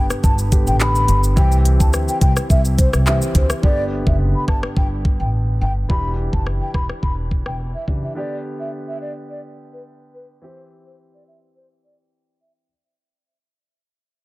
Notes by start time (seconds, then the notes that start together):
Already playing: D3 B3 G4
0.10 cross-stick, shaker
0.24 G1 A5, kick, shaker
0.38 shaker
0.52 D3 B3 G4, kick, closed hi-hat, shaker
0.67 A1 G5, shaker
0.80 B5, clap, shaker
0.95 shaker
1.08 G1, closed hi-hat, shaker
1.24 shaker
1.36 C2 E3 C4 G4 G5, kick, shaker
1.52 shaker
1.65 closed hi-hat, shaker
1.80 D2 A5, kick, shaker
1.93 cross-stick, shaker
2.08 G5, shaker
2.21 C2 G5, kick, closed hi-hat, shaker
2.37 cross-stick, shaker
2.50 C2 E5, kick, shaker
2.65 shaker
2.78 C5, kick, closed hi-hat, shaker
2.93 C2, cross-stick, shaker
3.06 E3 C4 G4 E5, clap, shaker
3.22 shaker
3.35 D2 C5, kick, closed hi-hat, shaker
3.50 cross-stick, shaker
3.62 G1 D3 B3 G4 D5, kick
4.07 F#1 E5, kick
4.35 B5
4.48 G1 A5, kick, cross-stick
4.63 cross-stick
4.77 G1 G5, kick
5.05 kick
5.20 A1 G5
5.61 G1 G5
5.89 E1 E3 D4 G4 B5, kick
6.33 F#1 A5, kick
6.47 cross-stick
6.61 G5
6.74 E1 B5, kick, cross-stick
6.89 cross-stick
7.03 E1 B5, kick
7.31 kick
7.46 E1 G5, cross-stick
7.75 E5
7.87 F#1 E3 D4 G4, kick
8.03 E5
8.15 D3 B3 G4 D5
8.60 E5
8.88 E5
9.01 D5
9.29 D5
9.73 B4
10.14 B4
10.42 E3 C4 G4 C5
10.86 C5
11.14 D5
11.27 E5
11.56 C5
11.84 D5
12.41 E5